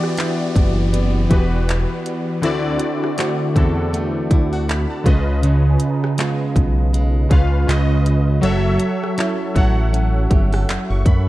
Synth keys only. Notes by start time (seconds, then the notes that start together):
Already playing: E3 B3 F#4 G4 D5
1.29 E3 B3 F#4 G4 B4
2.42 D3 C4 E4 F#4 D5
3.54 D3 C4 E4 F#4 A4
4.53 F#5
4.69 B5
4.90 A5
5.04 C#3 C#4 F4 B4 D#5
7.29 C#3 C#4 F4 B4 F5
7.66 C#3 C#4 F4 B4 D#5
8.41 F#3 F#4 A4 C#5 E5
9.54 F#3 F#4 A4 C#5 F#5
10.90 C#6
11.06 B5